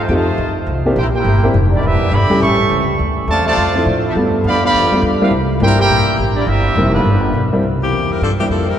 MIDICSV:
0, 0, Header, 1, 7, 480
1, 0, Start_track
1, 0, Key_signature, 0, "major"
1, 0, Tempo, 290276
1, 1110, Time_signature, 4, 2, 24, 8
1, 14533, End_track
2, 0, Start_track
2, 0, Title_t, "Trumpet section"
2, 0, Program_c, 0, 61
2, 87, Note_on_c, 0, 79, 74
2, 165, Note_off_c, 0, 79, 0
2, 215, Note_on_c, 0, 75, 85
2, 217, Note_on_c, 0, 72, 83
2, 221, Note_on_c, 0, 65, 87
2, 223, Note_on_c, 0, 81, 99
2, 953, Note_off_c, 0, 75, 0
2, 954, Note_off_c, 0, 72, 0
2, 956, Note_off_c, 0, 65, 0
2, 957, Note_off_c, 0, 81, 0
2, 1632, Note_on_c, 0, 79, 86
2, 1634, Note_on_c, 0, 64, 78
2, 1637, Note_on_c, 0, 72, 80
2, 1638, Note_on_c, 0, 70, 74
2, 1753, Note_off_c, 0, 79, 0
2, 1755, Note_off_c, 0, 64, 0
2, 1758, Note_off_c, 0, 70, 0
2, 1758, Note_off_c, 0, 72, 0
2, 1921, Note_on_c, 0, 79, 100
2, 1923, Note_on_c, 0, 64, 89
2, 1927, Note_on_c, 0, 70, 82
2, 1927, Note_on_c, 0, 72, 87
2, 2525, Note_off_c, 0, 79, 0
2, 2526, Note_off_c, 0, 64, 0
2, 2528, Note_off_c, 0, 70, 0
2, 2528, Note_off_c, 0, 72, 0
2, 2874, Note_on_c, 0, 64, 76
2, 2876, Note_on_c, 0, 58, 75
2, 2880, Note_on_c, 0, 74, 90
2, 2883, Note_on_c, 0, 67, 83
2, 3035, Note_off_c, 0, 64, 0
2, 3036, Note_off_c, 0, 58, 0
2, 3038, Note_off_c, 0, 74, 0
2, 3039, Note_off_c, 0, 67, 0
2, 3071, Note_on_c, 0, 76, 95
2, 3072, Note_on_c, 0, 71, 80
2, 3073, Note_on_c, 0, 62, 83
2, 3078, Note_on_c, 0, 67, 85
2, 3527, Note_off_c, 0, 67, 0
2, 3530, Note_off_c, 0, 76, 0
2, 3531, Note_off_c, 0, 62, 0
2, 3531, Note_off_c, 0, 71, 0
2, 3536, Note_on_c, 0, 83, 115
2, 3543, Note_on_c, 0, 74, 91
2, 3547, Note_on_c, 0, 67, 100
2, 3549, Note_on_c, 0, 76, 89
2, 4003, Note_off_c, 0, 83, 0
2, 4005, Note_off_c, 0, 76, 0
2, 4007, Note_off_c, 0, 74, 0
2, 4008, Note_off_c, 0, 67, 0
2, 4020, Note_on_c, 0, 79, 89
2, 4020, Note_on_c, 0, 85, 107
2, 4024, Note_on_c, 0, 76, 93
2, 4025, Note_on_c, 0, 69, 94
2, 4723, Note_off_c, 0, 79, 0
2, 4723, Note_off_c, 0, 85, 0
2, 4725, Note_off_c, 0, 69, 0
2, 4725, Note_off_c, 0, 76, 0
2, 5462, Note_on_c, 0, 74, 89
2, 5463, Note_on_c, 0, 65, 92
2, 5464, Note_on_c, 0, 72, 93
2, 5467, Note_on_c, 0, 81, 117
2, 5717, Note_off_c, 0, 74, 0
2, 5718, Note_off_c, 0, 65, 0
2, 5718, Note_off_c, 0, 72, 0
2, 5720, Note_off_c, 0, 81, 0
2, 5753, Note_on_c, 0, 74, 99
2, 5754, Note_on_c, 0, 72, 97
2, 5756, Note_on_c, 0, 65, 99
2, 5760, Note_on_c, 0, 81, 112
2, 6360, Note_off_c, 0, 74, 0
2, 6361, Note_off_c, 0, 72, 0
2, 6362, Note_off_c, 0, 65, 0
2, 6364, Note_off_c, 0, 81, 0
2, 6751, Note_on_c, 0, 60, 64
2, 6752, Note_on_c, 0, 65, 65
2, 6753, Note_on_c, 0, 69, 66
2, 6754, Note_on_c, 0, 76, 76
2, 6820, Note_off_c, 0, 60, 0
2, 6821, Note_off_c, 0, 65, 0
2, 6822, Note_off_c, 0, 69, 0
2, 6823, Note_off_c, 0, 76, 0
2, 7396, Note_on_c, 0, 77, 102
2, 7400, Note_on_c, 0, 67, 91
2, 7401, Note_on_c, 0, 74, 96
2, 7401, Note_on_c, 0, 83, 112
2, 7645, Note_off_c, 0, 77, 0
2, 7647, Note_off_c, 0, 67, 0
2, 7647, Note_off_c, 0, 83, 0
2, 7648, Note_off_c, 0, 74, 0
2, 7703, Note_on_c, 0, 77, 104
2, 7705, Note_on_c, 0, 74, 103
2, 7709, Note_on_c, 0, 67, 101
2, 7709, Note_on_c, 0, 83, 118
2, 8296, Note_off_c, 0, 77, 0
2, 8298, Note_off_c, 0, 74, 0
2, 8300, Note_off_c, 0, 67, 0
2, 8300, Note_off_c, 0, 83, 0
2, 8647, Note_on_c, 0, 67, 69
2, 8647, Note_on_c, 0, 77, 80
2, 8650, Note_on_c, 0, 71, 70
2, 8654, Note_on_c, 0, 62, 68
2, 8801, Note_off_c, 0, 67, 0
2, 8802, Note_off_c, 0, 77, 0
2, 8803, Note_off_c, 0, 71, 0
2, 8805, Note_off_c, 0, 62, 0
2, 9313, Note_on_c, 0, 64, 95
2, 9313, Note_on_c, 0, 79, 119
2, 9315, Note_on_c, 0, 72, 97
2, 9324, Note_on_c, 0, 70, 108
2, 9563, Note_off_c, 0, 64, 0
2, 9563, Note_off_c, 0, 79, 0
2, 9564, Note_off_c, 0, 72, 0
2, 9569, Note_off_c, 0, 70, 0
2, 9588, Note_on_c, 0, 72, 97
2, 9590, Note_on_c, 0, 70, 100
2, 9598, Note_on_c, 0, 64, 102
2, 9600, Note_on_c, 0, 79, 123
2, 10198, Note_off_c, 0, 72, 0
2, 10199, Note_off_c, 0, 70, 0
2, 10203, Note_off_c, 0, 64, 0
2, 10204, Note_off_c, 0, 79, 0
2, 10507, Note_on_c, 0, 74, 95
2, 10515, Note_on_c, 0, 64, 84
2, 10517, Note_on_c, 0, 58, 89
2, 10517, Note_on_c, 0, 67, 87
2, 10678, Note_off_c, 0, 67, 0
2, 10690, Note_off_c, 0, 74, 0
2, 10693, Note_off_c, 0, 64, 0
2, 10694, Note_off_c, 0, 58, 0
2, 10698, Note_on_c, 0, 67, 90
2, 10699, Note_on_c, 0, 70, 83
2, 10702, Note_on_c, 0, 76, 102
2, 10706, Note_on_c, 0, 60, 90
2, 11475, Note_off_c, 0, 67, 0
2, 11475, Note_off_c, 0, 70, 0
2, 11477, Note_off_c, 0, 76, 0
2, 11479, Note_off_c, 0, 60, 0
2, 11482, Note_on_c, 0, 71, 93
2, 11485, Note_on_c, 0, 55, 74
2, 11489, Note_on_c, 0, 62, 71
2, 11494, Note_on_c, 0, 65, 74
2, 12376, Note_off_c, 0, 71, 0
2, 12377, Note_off_c, 0, 55, 0
2, 12379, Note_off_c, 0, 62, 0
2, 12382, Note_off_c, 0, 65, 0
2, 14533, End_track
3, 0, Start_track
3, 0, Title_t, "Saxophone section"
3, 0, Program_c, 1, 65
3, 12957, Note_on_c, 1, 60, 78
3, 12957, Note_on_c, 1, 67, 86
3, 12962, Note_on_c, 1, 58, 77
3, 12963, Note_on_c, 1, 52, 71
3, 13387, Note_off_c, 1, 67, 0
3, 13388, Note_off_c, 1, 60, 0
3, 13390, Note_off_c, 1, 58, 0
3, 13391, Note_off_c, 1, 52, 0
3, 13416, Note_on_c, 1, 70, 82
3, 13418, Note_on_c, 1, 60, 70
3, 13420, Note_on_c, 1, 55, 65
3, 13423, Note_on_c, 1, 64, 74
3, 13599, Note_off_c, 1, 70, 0
3, 13600, Note_off_c, 1, 55, 0
3, 13600, Note_off_c, 1, 60, 0
3, 13602, Note_off_c, 1, 64, 0
3, 13617, Note_on_c, 1, 58, 77
3, 13617, Note_on_c, 1, 62, 77
3, 13617, Note_on_c, 1, 69, 82
3, 13620, Note_on_c, 1, 53, 77
3, 13742, Note_off_c, 1, 58, 0
3, 13742, Note_off_c, 1, 62, 0
3, 13742, Note_off_c, 1, 69, 0
3, 13744, Note_off_c, 1, 53, 0
3, 13882, Note_on_c, 1, 58, 68
3, 13886, Note_on_c, 1, 52, 67
3, 13889, Note_on_c, 1, 60, 69
3, 13889, Note_on_c, 1, 67, 84
3, 13968, Note_off_c, 1, 58, 0
3, 13970, Note_off_c, 1, 52, 0
3, 13973, Note_off_c, 1, 60, 0
3, 13973, Note_off_c, 1, 67, 0
3, 14068, Note_on_c, 1, 58, 77
3, 14068, Note_on_c, 1, 62, 70
3, 14069, Note_on_c, 1, 53, 76
3, 14071, Note_on_c, 1, 69, 86
3, 14341, Note_off_c, 1, 53, 0
3, 14341, Note_off_c, 1, 58, 0
3, 14341, Note_off_c, 1, 62, 0
3, 14342, Note_off_c, 1, 69, 0
3, 14365, Note_on_c, 1, 55, 77
3, 14365, Note_on_c, 1, 64, 77
3, 14367, Note_on_c, 1, 60, 73
3, 14367, Note_on_c, 1, 70, 91
3, 14533, Note_off_c, 1, 55, 0
3, 14533, Note_off_c, 1, 60, 0
3, 14533, Note_off_c, 1, 64, 0
3, 14533, Note_off_c, 1, 70, 0
3, 14533, End_track
4, 0, Start_track
4, 0, Title_t, "Upright piano"
4, 0, Program_c, 2, 0
4, 152, Note_on_c, 2, 60, 66
4, 153, Note_on_c, 2, 57, 75
4, 157, Note_on_c, 2, 63, 64
4, 160, Note_on_c, 2, 65, 65
4, 164, Note_on_c, 2, 67, 73
4, 413, Note_off_c, 2, 60, 0
4, 414, Note_off_c, 2, 57, 0
4, 415, Note_off_c, 2, 63, 0
4, 417, Note_off_c, 2, 65, 0
4, 419, Note_off_c, 2, 67, 0
4, 1414, Note_on_c, 2, 60, 81
4, 1418, Note_on_c, 2, 58, 82
4, 1420, Note_on_c, 2, 62, 80
4, 1424, Note_on_c, 2, 64, 72
4, 1428, Note_on_c, 2, 67, 88
4, 1578, Note_off_c, 2, 60, 0
4, 1580, Note_off_c, 2, 58, 0
4, 1581, Note_off_c, 2, 62, 0
4, 1583, Note_off_c, 2, 64, 0
4, 1585, Note_off_c, 2, 67, 0
4, 2372, Note_on_c, 2, 58, 80
4, 2375, Note_on_c, 2, 64, 69
4, 2376, Note_on_c, 2, 60, 72
4, 2380, Note_on_c, 2, 62, 68
4, 2390, Note_on_c, 2, 67, 86
4, 2537, Note_off_c, 2, 58, 0
4, 2538, Note_off_c, 2, 64, 0
4, 2539, Note_off_c, 2, 60, 0
4, 2541, Note_off_c, 2, 62, 0
4, 2546, Note_off_c, 2, 67, 0
4, 3798, Note_on_c, 2, 55, 78
4, 3801, Note_on_c, 2, 57, 68
4, 3806, Note_on_c, 2, 61, 70
4, 3810, Note_on_c, 2, 64, 74
4, 3818, Note_on_c, 2, 67, 85
4, 4431, Note_off_c, 2, 55, 0
4, 4432, Note_off_c, 2, 57, 0
4, 4435, Note_off_c, 2, 61, 0
4, 4436, Note_off_c, 2, 64, 0
4, 4441, Note_off_c, 2, 67, 0
4, 6208, Note_on_c, 2, 53, 73
4, 6208, Note_on_c, 2, 57, 65
4, 6214, Note_on_c, 2, 64, 81
4, 6215, Note_on_c, 2, 62, 65
4, 6217, Note_on_c, 2, 60, 68
4, 6836, Note_off_c, 2, 53, 0
4, 6836, Note_off_c, 2, 57, 0
4, 6838, Note_off_c, 2, 64, 0
4, 6839, Note_off_c, 2, 62, 0
4, 6840, Note_off_c, 2, 60, 0
4, 6880, Note_on_c, 2, 55, 71
4, 6886, Note_on_c, 2, 57, 73
4, 6890, Note_on_c, 2, 59, 72
4, 6895, Note_on_c, 2, 65, 76
4, 6896, Note_on_c, 2, 62, 65
4, 7588, Note_off_c, 2, 55, 0
4, 7590, Note_off_c, 2, 57, 0
4, 7593, Note_off_c, 2, 59, 0
4, 7595, Note_off_c, 2, 62, 0
4, 7595, Note_off_c, 2, 65, 0
4, 8135, Note_on_c, 2, 55, 77
4, 8139, Note_on_c, 2, 57, 73
4, 8145, Note_on_c, 2, 65, 83
4, 8146, Note_on_c, 2, 62, 69
4, 8149, Note_on_c, 2, 59, 67
4, 8579, Note_off_c, 2, 55, 0
4, 8581, Note_off_c, 2, 57, 0
4, 8584, Note_off_c, 2, 62, 0
4, 8584, Note_off_c, 2, 65, 0
4, 8585, Note_off_c, 2, 59, 0
4, 8623, Note_on_c, 2, 55, 85
4, 8626, Note_on_c, 2, 58, 78
4, 8626, Note_on_c, 2, 60, 78
4, 8630, Note_on_c, 2, 62, 75
4, 8633, Note_on_c, 2, 64, 98
4, 8782, Note_off_c, 2, 55, 0
4, 8784, Note_off_c, 2, 58, 0
4, 8784, Note_off_c, 2, 60, 0
4, 8786, Note_off_c, 2, 62, 0
4, 8787, Note_off_c, 2, 64, 0
4, 9287, Note_on_c, 2, 55, 69
4, 9291, Note_on_c, 2, 58, 68
4, 9294, Note_on_c, 2, 62, 60
4, 9300, Note_on_c, 2, 60, 62
4, 9304, Note_on_c, 2, 64, 72
4, 9540, Note_off_c, 2, 55, 0
4, 9542, Note_off_c, 2, 58, 0
4, 9543, Note_off_c, 2, 62, 0
4, 9546, Note_off_c, 2, 60, 0
4, 9549, Note_off_c, 2, 64, 0
4, 11197, Note_on_c, 2, 55, 74
4, 11201, Note_on_c, 2, 58, 65
4, 11204, Note_on_c, 2, 60, 60
4, 11206, Note_on_c, 2, 64, 78
4, 11210, Note_on_c, 2, 62, 63
4, 11673, Note_off_c, 2, 55, 0
4, 11676, Note_off_c, 2, 58, 0
4, 11677, Note_off_c, 2, 60, 0
4, 11678, Note_off_c, 2, 64, 0
4, 11680, Note_off_c, 2, 62, 0
4, 12449, Note_on_c, 2, 55, 81
4, 12449, Note_on_c, 2, 58, 70
4, 12457, Note_on_c, 2, 60, 79
4, 12461, Note_on_c, 2, 62, 72
4, 12463, Note_on_c, 2, 64, 88
4, 12616, Note_off_c, 2, 55, 0
4, 12616, Note_off_c, 2, 58, 0
4, 12619, Note_off_c, 2, 60, 0
4, 12621, Note_off_c, 2, 62, 0
4, 12623, Note_off_c, 2, 64, 0
4, 13890, Note_on_c, 2, 55, 60
4, 13894, Note_on_c, 2, 58, 55
4, 13897, Note_on_c, 2, 60, 56
4, 13897, Note_on_c, 2, 64, 65
4, 13901, Note_on_c, 2, 62, 60
4, 14519, Note_off_c, 2, 55, 0
4, 14521, Note_off_c, 2, 58, 0
4, 14522, Note_off_c, 2, 60, 0
4, 14522, Note_off_c, 2, 64, 0
4, 14524, Note_off_c, 2, 62, 0
4, 14533, End_track
5, 0, Start_track
5, 0, Title_t, "Trombone section"
5, 0, Program_c, 3, 61
5, 175, Note_on_c, 3, 48, 77
5, 176, Note_on_c, 3, 51, 78
5, 179, Note_on_c, 3, 57, 81
5, 933, Note_off_c, 3, 48, 0
5, 934, Note_off_c, 3, 51, 0
5, 935, Note_off_c, 3, 57, 0
5, 1599, Note_on_c, 3, 58, 75
5, 1600, Note_on_c, 3, 67, 76
5, 1606, Note_on_c, 3, 64, 81
5, 1728, Note_off_c, 3, 58, 0
5, 1729, Note_off_c, 3, 67, 0
5, 1733, Note_off_c, 3, 64, 0
5, 1889, Note_on_c, 3, 64, 86
5, 1891, Note_on_c, 3, 58, 86
5, 1891, Note_on_c, 3, 67, 89
5, 2507, Note_off_c, 3, 64, 0
5, 2509, Note_off_c, 3, 58, 0
5, 2509, Note_off_c, 3, 67, 0
5, 2835, Note_on_c, 3, 62, 79
5, 2995, Note_on_c, 3, 55, 84
5, 2995, Note_on_c, 3, 64, 82
5, 2999, Note_on_c, 3, 59, 82
5, 3014, Note_off_c, 3, 62, 0
5, 3461, Note_off_c, 3, 55, 0
5, 3462, Note_off_c, 3, 59, 0
5, 3481, Note_on_c, 3, 55, 86
5, 3482, Note_on_c, 3, 59, 88
5, 3489, Note_on_c, 3, 50, 94
5, 3493, Note_off_c, 3, 64, 0
5, 3928, Note_off_c, 3, 55, 0
5, 3947, Note_on_c, 3, 55, 84
5, 3951, Note_on_c, 3, 61, 87
5, 3955, Note_on_c, 3, 52, 85
5, 3976, Note_off_c, 3, 59, 0
5, 3980, Note_off_c, 3, 50, 0
5, 4684, Note_off_c, 3, 55, 0
5, 4686, Note_off_c, 3, 61, 0
5, 4688, Note_off_c, 3, 52, 0
5, 5411, Note_on_c, 3, 48, 90
5, 5417, Note_on_c, 3, 53, 89
5, 5417, Note_on_c, 3, 57, 89
5, 5690, Note_off_c, 3, 48, 0
5, 5693, Note_off_c, 3, 53, 0
5, 5693, Note_off_c, 3, 57, 0
5, 5722, Note_on_c, 3, 57, 95
5, 5724, Note_on_c, 3, 48, 93
5, 5724, Note_on_c, 3, 53, 96
5, 6344, Note_off_c, 3, 57, 0
5, 6345, Note_off_c, 3, 48, 0
5, 6345, Note_off_c, 3, 53, 0
5, 6694, Note_on_c, 3, 64, 68
5, 6776, Note_off_c, 3, 64, 0
5, 7345, Note_on_c, 3, 59, 90
5, 7355, Note_on_c, 3, 53, 87
5, 7360, Note_on_c, 3, 50, 89
5, 7589, Note_off_c, 3, 50, 0
5, 7595, Note_off_c, 3, 53, 0
5, 7606, Note_off_c, 3, 59, 0
5, 7609, Note_on_c, 3, 50, 100
5, 7615, Note_on_c, 3, 53, 100
5, 7626, Note_on_c, 3, 59, 98
5, 8246, Note_off_c, 3, 50, 0
5, 8249, Note_off_c, 3, 53, 0
5, 8255, Note_off_c, 3, 59, 0
5, 8607, Note_on_c, 3, 65, 66
5, 8611, Note_on_c, 3, 62, 64
5, 8615, Note_on_c, 3, 59, 68
5, 8780, Note_off_c, 3, 65, 0
5, 8782, Note_off_c, 3, 62, 0
5, 8785, Note_off_c, 3, 59, 0
5, 9263, Note_on_c, 3, 58, 90
5, 9267, Note_on_c, 3, 67, 94
5, 9269, Note_on_c, 3, 64, 91
5, 9536, Note_off_c, 3, 58, 0
5, 9539, Note_off_c, 3, 67, 0
5, 9540, Note_off_c, 3, 64, 0
5, 9567, Note_on_c, 3, 67, 110
5, 9571, Note_on_c, 3, 58, 101
5, 9573, Note_on_c, 3, 64, 97
5, 10186, Note_off_c, 3, 67, 0
5, 10189, Note_off_c, 3, 58, 0
5, 10189, Note_off_c, 3, 64, 0
5, 10498, Note_on_c, 3, 62, 78
5, 10666, Note_on_c, 3, 55, 90
5, 10671, Note_on_c, 3, 58, 86
5, 10672, Note_on_c, 3, 64, 87
5, 10685, Note_off_c, 3, 62, 0
5, 11442, Note_on_c, 3, 53, 74
5, 11444, Note_on_c, 3, 50, 70
5, 11447, Note_on_c, 3, 59, 77
5, 11458, Note_off_c, 3, 55, 0
5, 11461, Note_off_c, 3, 58, 0
5, 11462, Note_off_c, 3, 64, 0
5, 12356, Note_off_c, 3, 53, 0
5, 12357, Note_off_c, 3, 50, 0
5, 12358, Note_off_c, 3, 59, 0
5, 14533, End_track
6, 0, Start_track
6, 0, Title_t, "Upright bass"
6, 0, Program_c, 4, 32
6, 141, Note_on_c, 4, 41, 102
6, 611, Note_off_c, 4, 41, 0
6, 626, Note_on_c, 4, 38, 94
6, 1089, Note_off_c, 4, 38, 0
6, 1099, Note_on_c, 4, 36, 89
6, 1570, Note_off_c, 4, 36, 0
6, 1587, Note_on_c, 4, 34, 101
6, 2044, Note_off_c, 4, 34, 0
6, 2054, Note_on_c, 4, 31, 100
6, 2527, Note_off_c, 4, 31, 0
6, 2546, Note_on_c, 4, 29, 94
6, 3014, Note_off_c, 4, 29, 0
6, 3026, Note_on_c, 4, 28, 85
6, 3298, Note_off_c, 4, 28, 0
6, 3493, Note_on_c, 4, 31, 103
6, 3771, Note_off_c, 4, 31, 0
6, 3972, Note_on_c, 4, 33, 93
6, 4446, Note_off_c, 4, 33, 0
6, 4457, Note_on_c, 4, 37, 96
6, 4929, Note_off_c, 4, 37, 0
6, 4945, Note_on_c, 4, 38, 89
6, 5407, Note_off_c, 4, 38, 0
6, 5417, Note_on_c, 4, 40, 93
6, 5889, Note_off_c, 4, 40, 0
6, 5908, Note_on_c, 4, 41, 102
6, 6371, Note_off_c, 4, 41, 0
6, 6381, Note_on_c, 4, 45, 92
6, 6851, Note_off_c, 4, 45, 0
6, 6866, Note_on_c, 4, 43, 83
6, 7333, Note_off_c, 4, 43, 0
6, 7343, Note_on_c, 4, 41, 99
6, 7812, Note_off_c, 4, 41, 0
6, 7835, Note_on_c, 4, 40, 99
6, 8103, Note_off_c, 4, 40, 0
6, 8298, Note_on_c, 4, 38, 95
6, 8769, Note_off_c, 4, 38, 0
6, 8781, Note_on_c, 4, 36, 89
6, 9251, Note_off_c, 4, 36, 0
6, 9260, Note_on_c, 4, 31, 100
6, 9724, Note_off_c, 4, 31, 0
6, 9734, Note_on_c, 4, 34, 102
6, 10012, Note_off_c, 4, 34, 0
6, 10207, Note_on_c, 4, 33, 87
6, 10684, Note_off_c, 4, 33, 0
6, 10693, Note_on_c, 4, 31, 86
6, 11160, Note_off_c, 4, 31, 0
6, 11170, Note_on_c, 4, 29, 101
6, 11639, Note_off_c, 4, 29, 0
6, 11649, Note_on_c, 4, 31, 90
6, 12125, Note_off_c, 4, 31, 0
6, 12132, Note_on_c, 4, 35, 85
6, 12603, Note_off_c, 4, 35, 0
6, 12613, Note_on_c, 4, 36, 75
6, 13080, Note_off_c, 4, 36, 0
6, 13090, Note_on_c, 4, 40, 92
6, 13566, Note_off_c, 4, 40, 0
6, 13583, Note_on_c, 4, 43, 85
6, 14036, Note_off_c, 4, 43, 0
6, 14046, Note_on_c, 4, 41, 83
6, 14521, Note_off_c, 4, 41, 0
6, 14533, End_track
7, 0, Start_track
7, 0, Title_t, "Muted upright bass strokes"
7, 3306, Note_on_c, 9, 29, 44
7, 3472, Note_off_c, 9, 29, 0
7, 3786, Note_on_c, 9, 29, 46
7, 3951, Note_off_c, 9, 29, 0
7, 8126, Note_on_c, 9, 29, 45
7, 8291, Note_off_c, 9, 29, 0
7, 10029, Note_on_c, 9, 29, 39
7, 10195, Note_off_c, 9, 29, 0
7, 14533, End_track
0, 0, End_of_file